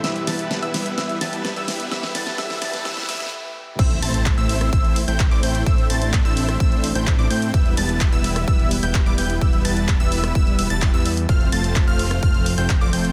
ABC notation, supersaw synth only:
X:1
M:4/4
L:1/16
Q:1/4=128
K:Am
V:1 name="Supersaw synth"
[G,B,EBe]2 [G,B,EBa]3 [G,B,EBe]3 [G,B,EBe]2 [G,B,EBa]3 [G,B,EBe]3 | [G,B,EBe]2 [G,B,EBa]2 [G,B,EBe]2 [G,B,EBa]2 [G,B,EBe]2 [G,B,EBe]2 z4 | [A,CEce]2 [A,CEca]3 [A,CEce]3 z3 [A,CEcg] z [A,CEcd] [A,CEcg]2 | [A,CEce]2 [A,CEca]3 [A,CEce]3 [A,CEe]2 z [A,CEcg] z [A,CEcd] [A,CEcg]2 |
[G,B,EBe]2 [G,B,EBa]3 [G,B,EBe]3 [G,B,EB]2 z [G,B,EBg] z [G,B,EBd] [G,B,EBg]2 | [G,B,EBe]2 [G,B,EBa]3 [G,B,EBe]3 [G,B,EBe]2 [G,B,EBe] [G,B,EBa]2 [G,B,EBe] z2 | [A,CFcf]2 [A,CFca]3 [A,CFcf]3 [A,CFcf]2 z [A,CFcg] z [A,CFcd] [A,CFcg]2 |]